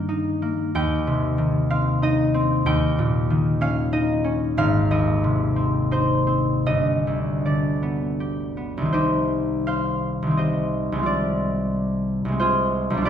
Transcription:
0.00 0.77 G2 medium
0.00 0.77 D#3 soft
0.00 3.02 G3 soft
0.00 0.41 A#3 medium
0.00 2.02 D#5 medium
0.00 0.74 G5 medium
0.09 2.01 D#4 medium
0.42 0.77 A#3 medium
0.75 2.65 D#2 medium
0.75 2.65 G5 loud
1.07 2.69 C3 medium
1.38 2.68 D#3 medium
1.70 2.33 C4 medium
1.70 2.24 F5 medium
2.02 3.92 D#4 medium
2.02 3.91 D#5 medium
2.34 2.69 C4 medium
2.66 4.60 D#2 medium
2.66 4.61 G5 loud
2.99 4.61 A#2 medium
3.30 4.61 D#3 medium
3.61 4.23 C#4 medium
3.61 4.15 F5 loud
3.93 5.90 D#4 medium
3.93 4.90 D#5 medium
4.24 4.60 C#4 medium
4.57 6.70 G#1 medium
4.57 5.14 F5 loud
4.91 6.71 D#2 medium
4.91 6.65 D#5 medium
5.24 6.70 C3 medium
5.56 6.26 C4 soft
5.91 6.70 D#4 medium
5.91 6.70 C5 medium
6.27 6.69 C4 soft
6.66 8.95 G1 medium
6.66 7.96 D#5 medium
7.07 8.96 D2 soft
7.46 8.97 D3 soft
7.46 8.96 D5 medium
7.83 8.56 B3 soft
8.20 8.93 G4 soft
8.57 8.96 B3 soft
8.77 10.21 C2 medium
8.77 10.25 D#3 soft
8.85 10.30 C4 soft
8.93 11.09 D#4 medium
8.93 10.38 G4 medium
8.93 9.67 C5 medium
9.67 10.37 C5 medium
9.67 10.85 F5 medium
10.22 10.91 C2 medium
10.27 11.03 D#3 soft
10.31 10.98 C4 soft
10.37 11.10 G4 soft
10.37 12.38 C5 soft
10.37 11.09 D#5 medium
10.92 12.24 C2 medium
10.92 12.27 G#3 soft
10.99 12.31 C4 soft
10.99 12.40 F4 soft
11.06 13.04 D5 medium
12.25 13.02 C2 medium
12.25 13.03 G#3 soft
12.32 13.05 C4 soft
12.40 13.00 F4 medium
12.40 13.10 G#4 medium
12.40 13.09 C5 medium
12.90 13.10 B1 medium
12.94 13.10 G3 medium
12.94 13.10 D4 medium
13.01 13.10 F4 medium
13.01 13.10 D5 loud
13.06 13.10 B4 medium

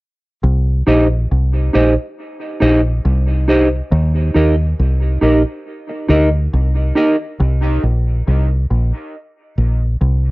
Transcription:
0.44 0.81 C2 loud
0.87 1.25 A#1 medium
0.87 1.06 D#4 medium
0.87 1.06 G4 medium
0.87 1.07 C5 medium
0.87 1.07 D#5 medium
1.31 1.69 C2 medium
1.73 1.95 A#1 medium
1.73 1.93 D#4 medium
1.73 1.93 G4 medium
1.73 1.94 C5 loud
1.73 1.94 D#5 loud
2.60 2.99 A#1 medium
2.60 2.80 D#4 medium
2.60 2.80 G4 medium
2.60 2.80 C5 loud
2.60 2.81 D#5 loud
3.05 3.80 C2 loud
3.48 3.67 D#4 medium
3.48 3.67 G4 medium
3.48 3.68 C5 loud
3.48 3.68 D#5 loud
3.92 4.29 D#2 loud
4.34 4.73 D#2 medium
4.34 4.54 D#4 medium
4.34 4.54 G4 medium
4.34 4.55 A#4 medium
4.34 4.55 D#5 medium
4.79 5.17 C2 medium
5.21 5.43 A#1 medium
5.21 5.41 D#4 medium
5.21 5.41 G4 medium
5.21 5.42 A#4 medium
5.21 5.42 D#5 medium
5.89 muted clean electric guitar stroke soft
6.08 6.47 D2 medium
6.08 6.28 D#4 medium
6.08 6.28 G4 medium
6.08 6.29 A#4 loud
6.08 6.29 D#5 medium
6.53 6.91 C2 loud
6.95 7.15 D#4 medium
6.95 7.15 G4 medium
6.95 7.16 A#4 loud
6.95 7.16 D#5 medium
7.40 7.77 C2 loud
7.83 8.21 A#1 medium
8.28 8.65 C2 medium
8.71 8.91 A#1 medium
9.58 9.95 A#1 medium
10.01 10.31 C2 loud

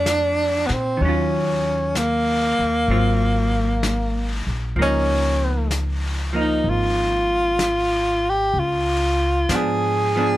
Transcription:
0.00 0.66 F2 medium
0.00 1.00 A3 soft
0.00 0.68 D4 medium
0.00 1.01 D4 soft
0.00 1.01 F4 soft
0.06 brush sweep soft
0.06 snare soft
0.06 hi-hat pedal soft
0.66 0.98 A#2 medium
0.66 0.74 B3 soft
0.66 snare soft
0.73 1.04 C4 medium
0.97 2.56 D#2 medium
0.97 2.87 D#3 soft
0.97 brush sweep soft
1.02 2.89 F#3 soft
1.02 1.99 C#4 medium
1.02 2.91 C#4 soft
1.09 2.90 F4 soft
1.95 4.48 A#3 medium
1.95 brush sweep soft
1.95 snare soft
1.95 hi-hat pedal soft
2.59 2.87 D#2 medium
2.88 4.43 G#1 medium
2.88 4.76 F#3 soft
2.88 4.78 C4 soft
2.88 4.78 F4 soft
2.88 brush sweep soft
3.83 brush sweep soft
3.83 snare soft
3.83 hi-hat pedal soft
4.47 4.74 A#1 medium
4.76 6.60 C#2 medium
4.76 6.32 F3 soft
4.76 6.33 A#3 soft
4.76 brush sweep soft
4.81 5.69 C#4 medium
4.81 6.35 D#4 soft
5.71 brush sweep soft
5.71 snare soft
5.71 hi-hat pedal soft
6.33 8.53 F3 soft
6.33 8.54 A#3 soft
6.33 8.55 D#4 soft
6.40 6.71 D#4 medium
6.64 8.49 G#1 medium
6.64 brush sweep soft
6.69 8.31 F4 medium
7.59 brush sweep soft
7.59 snare soft
7.59 hi-hat pedal soft
8.29 8.60 G4 medium
8.54 9.44 C#2 medium
8.54 brush sweep soft
8.59 9.57 F4 medium
9.49 10.37 G#2 medium
9.49 10.14 F3 soft
9.49 10.16 B3 soft
9.49 10.17 D4 soft
9.49 brush sweep soft
9.49 snare soft
9.49 hi-hat pedal soft
9.55 10.37 G#4 medium
10.16 10.37 F3 soft
10.16 10.37 B3 soft
10.16 10.37 D4 soft

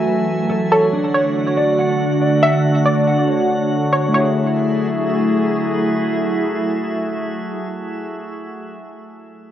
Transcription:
0.00 0.68 F#2 medium
0.00 0.68 E3 medium
0.00 0.68 F#3 medium
0.00 0.68 A3 medium
0.00 0.67 F#4 medium
0.00 0.48 A4 medium
0.00 0.68 E5 medium
0.00 0.71 E5 medium
0.00 0.68 G#5 medium
0.00 0.71 G#5 medium
0.49 0.71 A4 medium
0.71 4.11 D3 medium
0.71 4.11 A3 medium
0.71 4.11 D4 medium
0.71 4.11 F#4 medium
0.71 1.12 A4 loud
0.71 2.00 C#5 loud
0.71 4.11 F#5 medium
0.93 2.21 D4 medium
1.14 1.55 C#5 medium
1.57 2.20 D5 medium
1.79 2.41 F#5 medium
2.21 2.85 D5 medium
2.42 2.83 E5 loud
2.42 3.06 F#5 medium
2.86 3.26 D5 medium
2.86 4.14 D5 medium
3.08 4.12 F#5 medium
3.28 3.92 C#5 medium
3.93 4.13 C#5 medium
3.93 4.14 C#5 medium
4.08 8.80 A3 medium
4.08 8.84 E4 medium
4.14 8.33 F#3 medium
4.14 8.33 A3 medium
4.14 8.33 E4 medium
4.14 8.33 F#4 medium
4.14 8.88 F#4 medium
4.14 8.33 G#4 medium
4.14 5.39 C#5 medium
4.14 8.33 E5 medium
4.20 8.92 G#4 medium

